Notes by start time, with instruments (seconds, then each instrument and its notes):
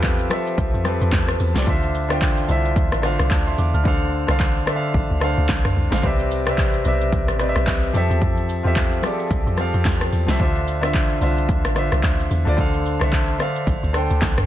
Already playing: log drum bass E2, grand piano F3 C4 F4 G4 A4 B4 E5
0.03 kick, clap, shaker
0.19 shaker
0.29 grand piano F3 C4 G4 A4 E5, cross-stick, open hi-hat, shaker
0.47 shaker
0.58 log drum bass C2, kick, shaker
0.74 log drum bass F2, shaker
0.84 grand piano F3 C4 G4 A4 B4, cross-stick, open hi-hat, shaker
1.01 log drum bass F2, shaker
1.12 log drum bass E2, kick, snare, clap, shaker
1.28 cross-stick, shaker
1.40 log drum bass E2, open hi-hat, shaker
1.54 log drum bass C2, grand piano F3 C4 G4 A4 D5, snare, shaker
1.66 log drum bass D2, grand piano D3 D4 F4 C5 E5, kick, shaker
1.83 shaker
1.95 open hi-hat, shaker
2.09 grand piano D3 D4 F4 C5 G5, cross-stick
2.22 kick, clap, shaker
2.37 shaker
2.47 log drum bass C2, grand piano D3 D4 E4 C5 E5, open hi-hat, shaker
2.56 grand piano F4
2.65 shaker
2.76 log drum bass D2, kick, shaker
2.92 log drum bass A1, cross-stick, shaker
3.02 grand piano D3 D4 F4 C5 F5, cross-stick, open hi-hat, shaker
3.19 log drum bass C2, cross-stick, shaker
3.31 log drum bass D2, grand piano C5 A5, kick, clap, shaker
3.47 grand piano E5 C6, shaker
3.58 log drum bass E2, grand piano F5 D6, open hi-hat, shaker
3.74 log drum bass D2, grand piano A5 F6, shaker
3.84 log drum bass D2, grand piano D3 D4 A4 C5 F5, kick
4.27 log drum bass C2, grand piano D3 D4 A4 C5 F5, cross-stick
4.40 kick, clap
4.66 grand piano D3 D4 A4 C5 E5, cross-stick
4.76 grand piano F5
4.94 log drum bass A1, kick
5.10 log drum bass D2
5.20 grand piano D3 D4 A4 C5 F5, cross-stick
5.38 log drum bass D2
5.49 log drum bass C2, kick, snare, clap
5.65 cross-stick, mid tom
5.76 log drum bass C2
5.91 log drum bass A1, grand piano D3 D4 A4 C5 F5, snare
6.02 log drum bass C2, grand piano C3 C4 B4 D5 E5, kick, shaker
6.19 shaker
6.31 open hi-hat, shaker
6.45 grand piano C3 C4 B4 D5 E5, cross-stick
6.58 kick, clap, shaker
6.73 shaker
6.84 log drum bass B1, grand piano C3 C4 B4 D5 E5, open hi-hat, shaker
7.01 shaker
7.13 log drum bass C2, kick, shaker
7.28 log drum bass A1, cross-stick, shaker
7.39 grand piano C3 C4 B4 D5 D#5, cross-stick, open hi-hat, shaker
7.49 grand piano E5
7.56 log drum bass B1, cross-stick, shaker
7.67 log drum bass C2, kick, clap, shaker
7.83 shaker
7.93 log drum bass F2, grand piano F3 C4 G4 A4 E5, open hi-hat, shaker
8.10 log drum bass E2, shaker
8.22 log drum bass F2, kick, shaker
8.37 shaker
8.49 open hi-hat, shaker
8.63 log drum bass E2, grand piano C4 F4 G4 A4 E5
8.76 kick, clap, shaker
8.92 shaker
9.02 grand piano F3 C4 G4 G#4 D5, cross-stick, open hi-hat, shaker
9.11 grand piano A4
9.19 shaker
9.31 log drum bass C2, kick, shaker
9.47 log drum bass F2, shaker
9.57 grand piano F3 C4 G4 A4 F5, cross-stick, open hi-hat, shaker
9.74 log drum bass F2, shaker
9.85 log drum bass E2, kick, snare, clap, shaker
10.01 cross-stick, shaker
10.13 log drum bass E2, open hi-hat, shaker
10.27 log drum bass C2, grand piano F3 C4 G4 A4 E5, snare, shaker
10.38 log drum bass D2, grand piano D3 D4 F4 C5 E5, kick, shaker
10.55 shaker
10.68 open hi-hat, shaker
10.81 grand piano D3 D4 F4 C5 E5, cross-stick
10.94 kick, clap, shaker
11.10 shaker
11.20 log drum bass C2, grand piano D3 D4 F4 C5 E5, open hi-hat, shaker
11.38 shaker
11.49 log drum bass D2, kick, shaker
11.65 log drum bass A1, cross-stick, shaker
11.75 grand piano D3 D4 F4 C5 E5, cross-stick, open hi-hat, shaker
11.92 log drum bass C2, cross-stick, shaker
12.03 log drum bass D2, kick, clap, shaker
12.20 shaker
12.31 log drum bass E2, open hi-hat, shaker
12.45 log drum bass D2, grand piano D3 D4 F4 C5 D5, shaker
12.57 log drum bass D2, grand piano D3 D4 A4 C5 F5, kick, shaker
12.74 shaker
12.86 open hi-hat, shaker
12.99 log drum bass C2, grand piano D3 D4 A4 C5 E5, cross-stick, shaker
13.13 kick, clap, shaker
13.28 shaker
13.38 grand piano D3 D4 A4 C5 F5, cross-stick, open hi-hat, shaker
13.56 shaker
13.67 log drum bass A1, kick, shaker
13.83 log drum bass D2, shaker
13.93 grand piano D3 D4 A4 C5 G5, cross-stick, open hi-hat, shaker
14.10 log drum bass D2, shaker
14.22 log drum bass C2, kick, snare, clap, shaker
14.38 cross-stick, mid tom, shaker